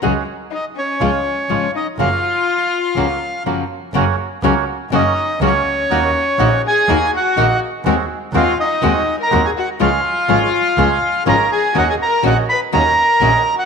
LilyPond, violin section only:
\new Staff \with { instrumentName = "Violin section" } { \time 4/4 \key fis \major \tempo 4 = 123 r4 dis'8 cis'2 dis'8 | eis'2. r4 | r2 dis'4 cis'4~ | cis'4. gis'4 fis'4 r8 |
r4 eis'8 dis'4~ dis'16 ais'8 gis'16 fis'8 | eis'2. ais'8 gis'8 | fis'16 gis'16 ais'8 fis'8 b'8 ais'4.~ ais'16 fis'16 | }